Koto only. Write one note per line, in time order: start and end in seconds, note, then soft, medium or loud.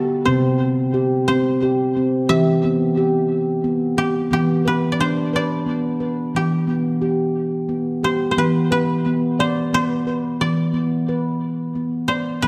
0.00 1.15 A4 medium
0.00 0.31 B4 medium
0.00 0.42 E5 loud
0.25 1.27 C5 medium
1.28 2.99 C5 medium
2.29 3.78 E5 medium
3.98 4.33 G4 medium
4.33 6.36 G4 medium
4.67 5.06 B4 medium
4.92 5.35 D5 medium
5.00 6.72 C5 medium
5.36 6.96 D5 medium
6.36 8.40 G4 medium
8.04 8.31 C5 medium
8.31 8.44 C5 medium
8.38 8.71 B4 medium
8.72 9.46 B4 medium
9.40 9.74 C5 medium
9.74 9.85 C5 medium
9.85 11.52 B4 medium
10.41 12.01 D5 medium
12.08 12.48 C5 medium
12.42 12.48 B4 medium